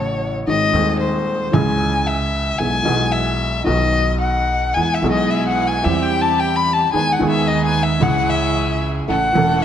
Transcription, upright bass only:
Already playing: A1
0.47 G#1
0.73 D#2
1.53 C#2
2.60 B1
2.87 B1
3.68 B1
4.76 E2
5.02 B1
5.85 E2
6.94 D#2
7.21 D#2
8.01 C#2
9.08 A1
9.35 E1

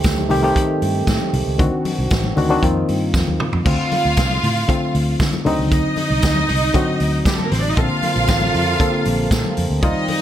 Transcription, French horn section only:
Already playing: D#3 A3 C4 G4
1.60 C4 D4 F#4
2.62 A#3 F4
7.76 C3 A#3 C4 A4
9.82 D#3 G3 F4

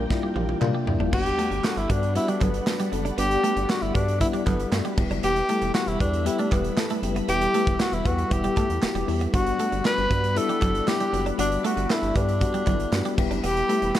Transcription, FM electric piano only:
Already playing: G3 A#3 D4 F4 G4
0.10 G3 A#3 D4 E4
0.35 G3 A#3 D4 G4
0.61 G3 A#3 D4 F4
0.86 G3 A#3 D4 E4
1.12 G3 B3 D4 F#4
1.38 G3 B3 D4 F#4
1.64 G3 B3 D4 A4
1.89 G3 B3 D4 F#4
2.15 G3 B3 D4 F#4
2.41 G3 B3 D4 A4
2.66 G3 B3 D4 F#4
2.92 G3 B3 D4 A4
3.17 G3 B3 D4 G4
3.43 G3 B3 D4 G4
3.69 G3 B3 D4 F#4
3.94 G3 B3 D4 F#4
4.20 G3 B3 D4 E4
4.46 G3 B3 D4 A4
4.72 G3 B3 D4 F#4
4.97 G3 B3 E4 G4
5.49 G3 B3 E4 A4
5.74 G3 B3 E4 G4
6.00 G3 B3 E4 G4
6.25 G3 B3 E4 G4
6.51 G3 B3 E4 G4
6.76 G3 B3 E4 A4
7.02 G3 B3 E4 G4
7.28 G3 B3 E4 G4
7.54 G3 B3 E4 G4
7.79 G3 B3 E4 F#4
8.04 G3 B3 E4 G4
8.30 G3 B3 E4 G4
8.56 G3 B3 E4 A4
8.82 G3 B3 E4 F#4
9.07 G3 B3 E4 G4
9.33 G3 B3 D4 F#4
9.58 G3 B3 D4 F#4
9.84 G3 B3 D4 F#4
10.10 G3 B3 D4 F#4
10.35 G3 B3 D4 E4
10.60 G3 B3 D4 F#4
10.86 G3 B3 D4 E4
11.12 G3 B3 D4 F#4
11.38 G3 B3 D4 F#4
11.64 G3 B3 D4 F#4
11.89 G3 B3 D4 A4
12.15 G3 B3 D4 G4
12.41 G3 B3 D4 F#4
12.66 G3 B3 D4 E4
12.92 G3 B3 D4 F#4
13.18 G3 B3 E4 G4
13.68 G3 B3 E4 G4
13.95 G3 B3 E4 G4

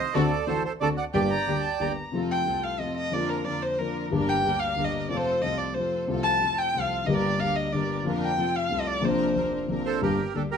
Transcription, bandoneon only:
Already playing: D#5
0.00 C5
0.13 A4 D5
0.47 A4 C5
0.65 A4 C5
0.81 A4 D5
0.97 D5 F#5
1.13 D5 G5
9.85 A4 C5
10.02 G4 A#4
10.35 D4 A4
10.51 G4 A#4

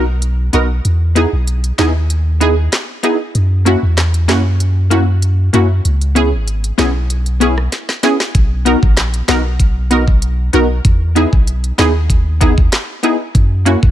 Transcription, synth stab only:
0.53 B3 D#4 F#4 A#4
1.15 B3 D#4 E4 G#4
1.78 B3 D#4 E4 G#4
2.40 B3 D#4 E4 G#4
3.03 B3 D#4 E4 G#4
3.65 A#3 C#4 E4 F#4
4.28 A#3 C#4 E4 F#4
4.90 A#3 C#4 E4 F#4
5.53 A#3 C#4 E4 F#4
6.15 B3 C#4 E4 G#4
6.78 B3 C#4 E4 G#4
7.40 B3 C#4 E4 G#4
8.03 B3 C#4 E4 G#4
8.65 B3 D#4 F#4 A#4
9.28 B3 D#4 F#4 A#4
9.90 B3 D#4 F#4 A#4
10.53 B3 D#4 F#4 A#4
11.15 B3 D#4 E4 G#4
11.78 B3 D#4 E4 G#4
12.40 B3 D#4 E4 G#4
13.03 B3 D#4 E4 G#4
13.65 A#3 C#4 E4 F#4

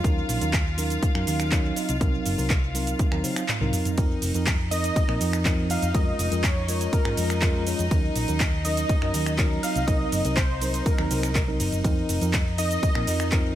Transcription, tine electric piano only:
0.04 F#3 C#4 D#4 A#4
0.41 F#3 C#4 D#4 A#4
0.77 F#3 C#4 D#4 A#4
1.14 F#3 C#4 D#4 A#4
1.51 F#3 C#4 D#4 A#4
1.76 F#3 C4 D#4 D#5
2.00 F#3 C4 D#4 A#4
2.37 F#3 C4 D#4 A#4
2.74 F#3 C4 D#4 A#4
3.11 F#3 C4 D#4 A#4
3.23 F#3 C4 D#4
3.60 F#3 C4 D#4 A#4
3.97 F3 C4 D#4 A#4
4.34 F3 C4 D#4 A#4
4.71 F3 C4 D#4 A#4
5.08 F3 C4 D#4 A#4
5.45 F3 C4 D#4 A#4
5.69 F3 C4 D#4 D#5
5.94 G#3 C#4 F4 A#4
6.31 G#3 C#4 F4 A#4
6.68 G#3 C#4 F4 A#4
7.05 G#3 C#4 F4 A#4
7.42 G#3 C#4 F4 A#4
7.66 G#3 C#4 F4 C#5
7.91 F#3 C#4 D#4 A#4
8.28 F#3 C#4 D#4 A#4
8.65 F#3 C#4 D#4 A#4
9.01 F#3 C#4 D#4 A#4
9.38 F#3 C#4 D#4 A#4
9.63 F#3 C4 D#4 D#5
9.87 F#3 C4 D#4 A#4
10.25 F#3 C4 D#4 A#4
10.61 F#3 C4 D#4 A#4
10.98 F#3 C4 D#4 A#4
11.10 F#3 C4 D#4 C5
11.47 F#3 C4 D#4 A#4
11.84 F3 C4 D#4 A#4
12.21 F3 C4 D#4 A#4
12.58 F3 C4 D#4 A#4
12.95 F3 C4 D#4 A#4
13.32 F3 C4 D#4 A#4

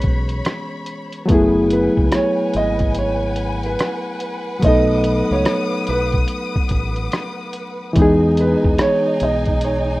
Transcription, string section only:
Already playing: C#5 B5
1.28 B4 F#5 G#5
4.63 D#6
7.96 D#4 G#5

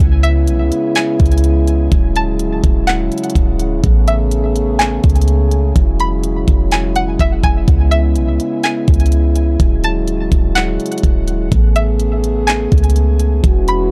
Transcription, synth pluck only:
0.23 E5
0.96 G#5
2.16 A5
2.87 F#5
4.08 E5
4.79 G#5
6.00 B5
6.72 G#5
6.96 F#5
7.20 E5
7.44 G#5
7.91 E5
8.64 G#5
9.84 A5
10.55 F#5
11.76 E5
12.47 G#5
13.68 B5

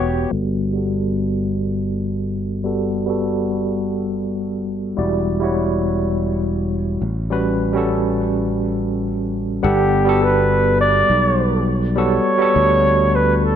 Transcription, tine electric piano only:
Already playing: B3 F#4 G4 B4 C#5 F#5
0.31 G3 B3 F#4
0.73 G3 B3 F#4 A4
2.64 G3 B3 F#4 A4
3.06 G3 B3 F#4
3.10 A4
4.97 G3 E4 F#4 D5
5.40 G3 E4 F#4
5.44 C#5
7.30 G3 C#4 F#4 B4
7.73 G3 C#4 F#4
7.77 A4
9.62 G3 B3 A4 F#5
10.05 G3 B3 F#4
10.09 A4
11.96 G3 B3 F#4 A4
12.38 G3 B3 F#4 A4

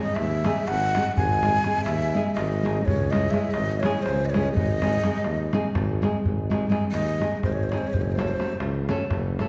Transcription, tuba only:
0.17 D#2
0.67 G#1
1.18 G#1
1.86 D#2
2.37 G#1
2.87 C#2
3.55 G#1
4.06 C#2
4.57 G#1
5.24 D#2
5.74 G#1
6.25 G#1
6.92 D#2
7.43 G#1
7.93 F#1
8.60 C#2
9.11 F#1

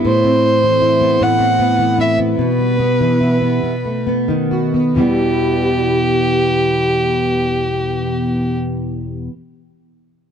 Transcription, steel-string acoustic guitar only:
Already playing: E3 G3 B3 E4
0.05 A2
0.24 C4
0.64 E3
0.81 E4
1.01 B3
1.21 A2
1.39 C4
1.59 B3
1.79 E3
1.98 E4
2.19 B3
2.39 B2
2.58 G3
2.79 B3
3.00 E3
3.20 E4
3.41 B3
3.63 B2
3.85 A3
4.07 B3
4.28 D#3
4.51 F#4
4.74 B3
4.95 E2 B2 E3
4.99 G3 B3

